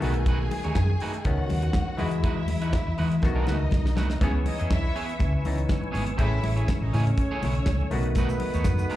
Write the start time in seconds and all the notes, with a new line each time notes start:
0.00 B1 D#3 A3 B3 D#4 F#4 G#4 G#5, open hi-hat, high conga
0.04 B4
0.14 muted clean electric guitar stroke, closed hi-hat
0.26 A3 D#4 F#4 B4, kick, closed hi-hat, muted conga
0.41 muted clean electric guitar stroke
0.51 muted clean electric guitar stroke, open hi-hat, muted conga
0.64 D#2 A3 D#4 F#4 C#5, closed hi-hat
0.75 F#2, kick, snare, closed hi-hat, high conga
0.90 muted clean electric guitar stroke
1.00 A3 D#4 F#4 B4, open hi-hat
1.14 muted clean electric guitar stroke, closed hi-hat
1.24 C#2 D#3 A3 B3 C#4 F#4 F#5, muted clean electric guitar stroke, kick, closed hi-hat, muted conga
1.38 muted clean electric guitar stroke
1.50 D#2, open hi-hat, muted conga
1.62 muted clean electric guitar stroke, closed hi-hat
1.73 kick, snare, closed hi-hat, high conga
1.88 muted clean electric guitar stroke
1.97 E2 E3 G#3 D#4 E4 F#4 B4 E5, open hi-hat, high conga
2.11 muted clean electric guitar stroke, closed hi-hat
2.23 E2 G#3 D#4 F#4 B4, kick, closed hi-hat, muted conga
2.36 muted clean electric guitar stroke
2.48 E2, muted clean electric guitar stroke, open hi-hat, muted conga
2.61 G#3 D#4 F#4 B4, closed hi-hat
2.73 kick, snare, closed hi-hat, high conga
2.87 E2, muted clean electric guitar stroke
2.98 E3 G#3 D#4 F#4 B4, open hi-hat
3.11 muted clean electric guitar stroke, closed hi-hat
3.22 B1 D#3 A3 B3 D#4 F#4 D#5, muted clean electric guitar stroke, kick, snare, muted conga
3.35 A3 D#4 F#4 B4
3.47 C#2 A3 D#4 F#4 B4, snare, muted conga, low conga
3.60 muted clean electric guitar stroke
3.71 B1, kick, snare, high conga
3.86 muted clean electric guitar stroke, snare
3.96 C2 A3 D#4 F#4 B4, snare, high conga
4.10 muted clean electric guitar stroke, snare
4.21 C#2 E3 B3 C#4 E4 G#4 B4 C#5 G#5 C#6 E6, kick, closed hi-hat, muted conga
4.34 muted clean electric guitar stroke
4.46 D#4 D#5, muted clean electric guitar stroke, open hi-hat, muted conga
4.59 E2 B3 E4 G#4 D#5, closed hi-hat
4.70 B1 E4 E5, kick, snare, closed hi-hat, high conga
4.83 muted clean electric guitar stroke
4.95 B3 E4 G#4 C#5, open hi-hat
5.08 muted clean electric guitar stroke, closed hi-hat
5.19 C#2, muted clean electric guitar stroke, kick, closed hi-hat, muted conga, low conga
5.32 muted clean electric guitar stroke
5.45 C#2 E3 B3 C#4 D#4, open hi-hat, muted conga
5.55 muted clean electric guitar stroke, closed hi-hat
5.69 kick, snare, closed hi-hat, high conga
5.81 muted clean electric guitar stroke, high conga
5.91 G#1 B3 E4 G#4 C#5, open hi-hat, high conga
6.07 muted clean electric guitar stroke, closed hi-hat
6.17 A1 E3 A3 C#4 E4 G#4 C#5 E5 E6, kick, closed hi-hat, muted conga
6.32 muted clean electric guitar stroke
6.43 A1, muted clean electric guitar stroke, open hi-hat, muted conga
6.56 C#4 E4 G#4 C#5, closed hi-hat
6.68 kick, snare, closed hi-hat, high conga
6.82 A1 D#4 D#5, muted clean electric guitar stroke
6.93 A2 C#4 E4 G#4 C#5, open hi-hat, low conga
7.05 C#4 C#5, muted clean electric guitar stroke, closed hi-hat
7.18 muted clean electric guitar stroke, kick, closed hi-hat
7.31 C#4 E4 G#4 C#5
7.43 B1 C#4 E4 G#4 C#5, open hi-hat, muted conga, low conga
7.55 muted clean electric guitar stroke, closed hi-hat
7.66 C#2, muted clean electric guitar stroke, kick, snare, closed hi-hat, high conga
7.81 muted clean electric guitar stroke, high conga
7.91 B1 D#3 A3 B3 F#4 F#5 B5 D#6, open hi-hat, high conga
8.03 muted clean electric guitar stroke, closed hi-hat
8.15 A3 B3 D#4 F#4 B4, kick, closed hi-hat, muted conga, shaker
8.29 muted clean electric guitar stroke, shaker
8.40 muted clean electric guitar stroke, open hi-hat, muted conga
8.54 D#2 A3 D#4 F#4 C#5, closed hi-hat, shaker
8.64 F#2, kick, snare, closed hi-hat, high conga, shaker
8.78 muted clean electric guitar stroke, shaker
8.89 A3 D#4 F#4 B4, open hi-hat, shaker